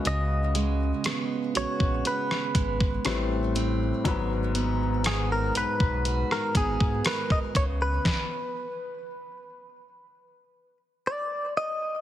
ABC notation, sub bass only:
X:1
M:4/4
L:1/16
Q:1/4=60
K:Blyd
V:1 name="Sub bass" clef=bass
C,,4 z2 A,,, A,,, z2 G,,,2 =A,,,4 | G,,,6 B,,, B,,,2 z G,,, G,, z2 C,,2 | z16 |]